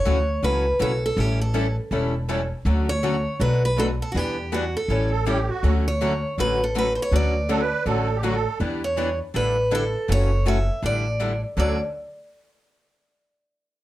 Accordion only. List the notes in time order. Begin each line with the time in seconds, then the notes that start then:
5.12 A4
5.26 G4
5.49 F#4
7.50 A4
7.61 B4
7.86 A4
8.16 G4
8.23 F#4
8.35 A4
11.57 A4